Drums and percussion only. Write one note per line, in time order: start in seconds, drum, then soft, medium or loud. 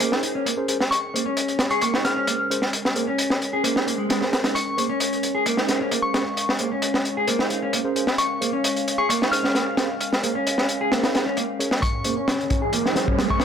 0.00 closed hi-hat medium
0.12 snare soft
0.23 closed hi-hat medium
0.46 closed hi-hat medium
0.68 closed hi-hat medium
0.80 snare medium
0.92 closed hi-hat medium
1.16 closed hi-hat medium
1.37 closed hi-hat medium
1.48 closed hi-hat soft
1.59 snare medium
1.59 closed hi-hat medium
1.71 closed hi-hat soft
1.81 closed hi-hat medium
1.94 snare soft
2.05 snare medium
2.05 closed hi-hat medium
2.27 closed hi-hat medium
2.51 closed hi-hat medium
2.62 snare soft
2.73 closed hi-hat medium
2.85 snare medium
2.96 closed hi-hat medium
3.18 closed hi-hat medium
3.30 snare medium
3.42 closed hi-hat medium
3.64 closed hi-hat medium
3.76 snare medium
3.88 closed hi-hat medium
4.10 snare loud
4.10 closed hi-hat medium
4.22 snare medium
4.33 snare medium
4.33 closed hi-hat medium
4.44 snare loud
4.44 closed hi-hat medium
4.56 closed hi-hat medium
4.78 closed hi-hat medium
5.00 closed hi-hat medium
5.13 closed hi-hat soft
5.23 closed hi-hat medium
5.46 closed hi-hat medium
5.57 snare soft
5.68 snare soft
5.68 closed hi-hat medium
5.92 closed hi-hat medium
6.14 snare loud
6.14 closed hi-hat medium
6.37 closed hi-hat medium
6.49 snare medium
6.59 closed hi-hat medium
6.82 closed hi-hat medium
6.94 snare medium
7.05 closed hi-hat medium
7.28 closed hi-hat medium
7.39 snare soft
7.50 closed hi-hat medium
7.73 closed hi-hat medium
7.96 closed hi-hat medium
8.07 snare medium
8.18 closed hi-hat medium
8.42 closed hi-hat medium
8.64 closed hi-hat medium
8.76 closed hi-hat soft
8.88 closed hi-hat medium
9.10 closed hi-hat medium
9.22 snare soft
9.33 closed hi-hat medium
9.44 snare soft
9.55 snare soft
9.55 closed hi-hat medium
9.77 snare medium
9.77 closed hi-hat medium
10.01 closed hi-hat medium
10.13 snare medium
10.23 closed hi-hat medium
10.47 closed hi-hat medium
10.58 snare medium
10.69 closed hi-hat medium
10.92 snare loud
10.92 closed hi-hat medium
11.04 snare loud
11.04 closed hi-hat medium
11.15 snare medium
11.15 closed hi-hat medium
11.37 closed hi-hat medium
11.60 closed hi-hat medium
11.71 snare medium
11.83 kick loud
11.83 closed hi-hat medium
12.04 closed hi-hat medium
12.28 snare loud
12.28 closed hi-hat medium
12.40 closed hi-hat soft
12.50 kick medium
12.50 closed hi-hat medium
12.73 closed hi-hat medium
12.86 snare soft
12.96 snare soft
12.96 closed hi-hat medium
13.08 kick medium
13.19 snare loud
13.19 closed hi-hat medium
13.30 kick loud
13.40 snare loud
13.40 closed hi-hat medium